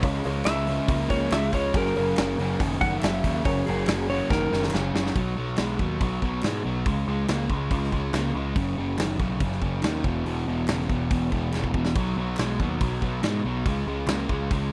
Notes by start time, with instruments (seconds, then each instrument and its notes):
Already playing: electric slide guitar B5
0.02 picked electric bass C#2, distorted electric guitar C#3 G#3, overdriven electric guitar C#3 F3 G#3 C#4, upright piano F4 G#4 C#5, kick, open hi-hat
0.14 snare
0.24 picked electric bass C#2, distorted electric guitar C#3 G#3, overdriven electric guitar C#3 F3 G#3 C#4, upright piano F4 G#4 C#5, open hi-hat
0.45 picked electric bass C#2, distorted electric guitar C#3 G#3, overdriven electric guitar C#3 F3 G#3 C#4, electric slide guitar E5, snare, clap, open hi-hat
0.67 overdriven electric guitar C#3 F3 G#3 C#4, distorted electric guitar C#3 G#3, open hi-hat
0.88 picked electric bass C#2, overdriven electric guitar C#3 F3 G#3 C#4, distorted electric guitar C#3 A#3, kick, open hi-hat
1.09 picked electric bass C#2, overdriven electric guitar C#3 F3 G#3 C#4, distorted electric guitar C#3 A#3, electric slide guitar C#5, kick, open hi-hat
1.31 picked electric bass C#2, overdriven electric guitar C#3 F3 G#3 C#4, distorted electric guitar C#3 G#3, electric slide guitar E5, snare, clap, open hi-hat
1.53 picked electric bass C#2, overdriven electric guitar C#3 F3 G#3 C#4, distorted electric guitar C#3 G#3, electric slide guitar C#5, kick, open hi-hat
1.74 picked electric bass F#1, overdriven electric guitar F#2 C#3 F#3 A#3 C#4, distorted electric guitar F#2 C#3, upright piano F#4 G#4 A#4, electric slide guitar A#4, kick, open hi-hat
1.85 snare
1.95 picked electric bass F#1, overdriven electric guitar F#2 C#3 F#3 A#3 C#4, distorted electric guitar F#2 C#3, upright piano F#4 G#4 A#4, open hi-hat
2.17 picked electric bass F#1, overdriven electric guitar F#2 C#3 F#3 A#3 C#4, distorted electric guitar F#2 C#3, snare, clap, open hi-hat
2.38 picked electric bass F#1, overdriven electric guitar F#2 C#3 F#3 A#3 C#4, distorted electric guitar F#2 C#3, open hi-hat
2.59 picked electric bass F#1, overdriven electric guitar F#2 C#3 F#3 A#3 C#4, distorted electric guitar F#2 D#3, kick, open hi-hat
2.81 picked electric bass F#1, overdriven electric guitar F#2 C#3 F#3 A#3 C#4, distorted electric guitar F#2 D#3, electric slide guitar F#5, kick, open hi-hat
3.00 picked electric bass F#1, overdriven electric guitar F#2 C#3 F#3 A#3, distorted electric guitar F#2, electric slide guitar E5, snare, clap, open hi-hat
3.04 distorted electric guitar C#3, overdriven electric guitar C#4
3.24 picked electric bass D#2, overdriven electric guitar F#2 C#3 F#3 A#3 C#4, distorted electric guitar F#2 C#3, kick, open hi-hat
3.45 picked electric bass F#1, overdriven electric guitar F#2 C#3 F#3 A#3 C#4, distorted electric guitar F#2 C#3, upright piano F#4 G#4 A#4, electric slide guitar C#5, kick, open hi-hat
3.66 picked electric bass F#1, overdriven electric guitar F#2 C#3 F#3 A#3 C#4, distorted electric guitar F#2 C#3, upright piano F#4 G#4 A#4, electric slide guitar G#4, open hi-hat
3.87 picked electric bass F#1, overdriven electric guitar F#2 C#3 F#3 A#3 C#4, distorted electric guitar F#2 C#3, snare, clap, open hi-hat
4.08 overdriven electric guitar F#2 C#3 F#3 A#3 C#4, distorted electric guitar F#2 C#3, electric slide guitar C#5, open hi-hat
4.30 picked electric bass F#1, overdriven electric guitar F#2 C#3 F#3 A#3 C#4, distorted electric guitar F#2 D#3, electric slide guitar A#4, kick, snare
4.51 picked electric bass F#1, distorted electric guitar F#2 D#3, overdriven electric guitar F#2 C#3 F#3 A#3 C#4, snare
4.63 snare
4.70 picked electric bass F#1, distorted electric guitar F#2 C#3, overdriven electric guitar F#2 C#3 F#3, clap
4.75 overdriven electric guitar A#3 C#4, snare
4.94 picked electric bass F#1, overdriven electric guitar F#2 C#3 F#3 A#3 C#4, distorted electric guitar F#2 C#3, snare
5.06 snare
5.15 picked electric bass B1, distorted electric guitar B2 F#3, kick, open hi-hat
5.35 picked electric bass B1, distorted electric guitar B2 F#3
5.57 picked electric bass B1, distorted electric guitar B2 G#3, snare, clap, open hi-hat
5.79 picked electric bass D#2, distorted electric guitar B2 F#3, kick
6.01 picked electric bass B1, distorted electric guitar B2 F#3, kick, open hi-hat
6.22 picked electric bass B1, distorted electric guitar B2 F#3, kick
6.42 picked electric bass G#2, distorted electric guitar B2 G#3, snare, clap, open hi-hat
6.65 picked electric bass B1, distorted electric guitar B2 F#3
6.86 picked electric bass C#2, distorted electric guitar C#3 G#3, kick, open hi-hat
7.07 picked electric bass C#2, distorted electric guitar C#3 G#3
7.28 picked electric bass C#2, distorted electric guitar C#3 A#3, snare, clap, open hi-hat
7.50 picked electric bass C#2, distorted electric guitar C#3 G#3, kick
7.71 picked electric bass C#2, distorted electric guitar C#3 G#3, kick, open hi-hat
7.83 snare
7.92 picked electric bass C#2, distorted electric guitar C#3 G#3, kick
8.13 picked electric bass C#2, distorted electric guitar C#3 A#3, snare, clap, open hi-hat
8.35 picked electric bass C#2, distorted electric guitar C#3 G#3
8.56 picked electric bass F#1, distorted electric guitar F#2 C#3, kick, open hi-hat
8.78 picked electric bass F#1, distorted electric guitar F#2 C#3
8.99 picked electric bass F#1, distorted electric guitar F#2 D#3, snare, clap, open hi-hat
9.20 picked electric bass B1, distorted electric guitar F#2 C#3, kick
9.40 picked electric bass F#1, distorted electric guitar F#2, kick, open hi-hat
9.44 distorted electric guitar C#3
9.52 snare
9.62 picked electric bass F#1, distorted electric guitar F#2 C#3, kick
9.83 picked electric bass D#2, distorted electric guitar F#2 D#3, snare, clap, open hi-hat
10.04 picked electric bass E1, distorted electric guitar E2 B2, kick
10.25 picked electric bass E1, distorted electric guitar E2 B2, open hi-hat
10.47 picked electric bass E1, distorted electric guitar E2 B2
10.68 picked electric bass E1, distorted electric guitar E2 C#3, snare, clap, open hi-hat
10.81 snare
10.89 picked electric bass E1, distorted electric guitar E2 B2, kick
11.11 picked electric bass E1, distorted electric guitar E2 B2, kick, open hi-hat
11.32 picked electric bass E1, distorted electric guitar E2 B2, kick
11.53 picked electric bass E1, distorted electric guitar E2 C#3, snare, clap
11.64 kick
11.74 picked electric bass E1, distorted electric guitar E2 B2, kick
11.85 snare
11.95 picked electric bass B1, distorted electric guitar B2 F#3, kick, open hi-hat
12.16 picked electric bass B1, distorted electric guitar B2 F#3
12.37 picked electric bass B1, distorted electric guitar B2 G#3, snare, clap, open hi-hat
12.60 picked electric bass D#2, distorted electric guitar B2 F#3, kick
12.81 picked electric bass B1, distorted electric guitar B2 F#3, kick, open hi-hat
13.02 picked electric bass B1, distorted electric guitar B2 F#3, kick
13.22 picked electric bass G#2, distorted electric guitar B2 G#3, snare, clap, open hi-hat
13.44 picked electric bass B1, distorted electric guitar B2 F#3
13.65 picked electric bass C#2, distorted electric guitar C#3 G#3, kick, open hi-hat
13.86 picked electric bass C#2, distorted electric guitar C#3 G#3
14.07 picked electric bass C#2, distorted electric guitar C#3 A#3, snare, clap, open hi-hat
14.29 picked electric bass C#2, distorted electric guitar C#3 G#3, kick
14.51 picked electric bass C#2, distorted electric guitar C#3 G#3, kick, open hi-hat